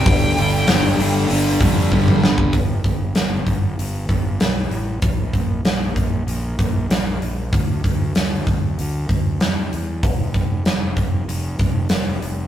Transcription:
<<
  \new Staff \with { instrumentName = "Lead electric guitar" } { \time 4/4 \key c \major \tempo 4 = 96 g''2. r4 | r1 | r1 | r1 |
r1 | }
  \new Staff \with { instrumentName = "Distorted electric guitar" } { \clef bass \time 4/4 \key c \major <g, d g>8 <g, d g>8 <g, d g>8 <g, d g>8 <g, d g>8 <g, d g>8 <g, d g>8 <g, d g>8 | r1 | r1 | r1 |
r1 | }
  \new Staff \with { instrumentName = "Fingered electric bass" } { \clef bass \time 4/4 \key c \major g,,8 g,,8 g,,8 g,,8 g,,8 f,8 g,,8 g,,8 | g,,8 g,,8 g,,8 g,,8 g,,8 g,,8 b,,8 a,,8 | bes,,4 bes,,4 bes,,8 bes,,8 bes,,8 bes,,8 | d,8 d,8 d,8 d,8 d,8 d,8 f,8 e,8 |
f,,4 f,,4 f,,8 f,,8 f,,8 f,,8 | }
  \new DrumStaff \with { instrumentName = "Drums" } \drummode { \time 4/4 <hho bd>8 hho8 <hho sn>8 hho8 hho8 <hho bd>8 bd16 toml16 sn16 bd16 | <hho bd>8 <hho bd>8 <hho sn>8 <hho bd>8 hho8 <hho bd>8 <hho sn>8 hho8 | <hho bd>8 <hho bd>8 <hho sn>8 <hho bd>8 hho8 <hho bd>8 <hho sn>8 hho8 | <hho bd>8 <hho bd>8 <hho sn>8 <hho bd>8 hho8 <hho bd>8 <hho sn>8 hho8 |
<hho bd>8 <hho bd>8 <hho sn>8 <hho bd>8 hho8 <hho bd>8 <hho sn>8 hho8 | }
>>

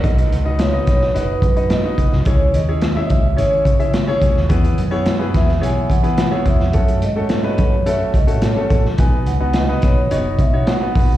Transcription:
<<
  \new Staff \with { instrumentName = "Vibraphone" } { \time 4/4 \key b \mixolydian \tempo 4 = 107 r4 cis''8 cis''8 b'4 dis''4 | cis''8 r4 e''8 cis''4. r8 | r4. e''8 gis''8 fis''4 e''8~ | e''8 dis''4 cis''8 e''8 dis''8 cis''8. r16 |
gis''8 fis''8 dis''8 cis''8 r8 e''8 fis''8 fis''8 | }
  \new Staff \with { instrumentName = "Grand piano" } { \time 4/4 \key b \mixolydian <dis' fis' b' dis''>8 r16 <dis' fis' b' dis''>16 r16 <dis' fis' b' dis''>8 r16 <dis' fis' b' dis''>8 r16 <dis' fis' b' dis''>16 r16 <dis' fis' b' dis''>8 r16 | <cis' e' gis' cis''>8 r16 <cis' e' gis' cis''>16 r16 <cis' e' gis' e''>8 r16 <cis' e' gis' cis''>8 r16 <cis' e' gis' e''>16 r16 <cis' e' gis' cis''>8 r16 | <b e' gis' b'>8 r16 <b e' gis' cis''>16 r16 <b e' gis' b'>8 r16 <b e' gis' cis''>8 r16 <b e' gis' b'>16 r16 <b e' gis' cis''>8 r16 | <a cis' fis' a'>8 r16 <a cis' fis' a'>16 r16 <a cis' fis' b'>8 r16 <a cis' fis' a'>8 r16 <a cis' fis' a'>16 r16 <a cis' fis' a'>8 r16 |
<b dis' fis' b'>8 r16 <b dis' fis' b'>16 r16 <b dis' fis' b'>8 r16 <b dis' fis' cis''>8 r16 <b dis' fis' cis''>16 r16 <b dis' fis' b'>8 r16 | }
  \new Staff \with { instrumentName = "Fingered electric bass" } { \clef bass \time 4/4 \key b \mixolydian b,,8 cis,4 b,,8 fis,,8 fis,8. r16 fis,,16 c,16 | cis,8 dis,4 cis,8 gis,,8 cis8. r16 cis,16 dis,16 | e,8 fis,4 e,8 b,,8 e8. r16 e,16 eis,16 | fis,8 gis,4 fis,8. r16 cis,16 a,8 r16 a,,16 ais,,16 |
b,,8 cis,4 b,,8 fis,,8 b,8. r16 b,,16 c,16 | }
  \new DrumStaff \with { instrumentName = "Drums" } \drummode { \time 4/4 <hh bd>16 hh16 hh8 <hh sn>8 <hh bd sn>16 sn16 hh8 <hh bd>16 hh16 <hh sn>8 <hh bd>16 sn16 | <hh bd>8 hh8 <hh sn>8 <hh bd>8 hh8 <hh bd>16 hh16 <hh sn>8 <hh bd>16 sn16 | <hh bd>16 hh16 hh8 <hh sn>8 <hh bd sn>16 sn16 hh8 <hh bd>16 hh16 <hh sn>8 <hh bd>16 sn16 | <hh bd>16 hh16 hh8 <hh sn>8 <hh bd>8 hh8 <hh bd>16 hh16 <hh sn>8 <hh bd>16 sn16 |
<hh bd>8 hh8 <hh sn>8 <hh bd sn>8 hh8 <hh bd>8 <hh sn>8 <hho bd>8 | }
>>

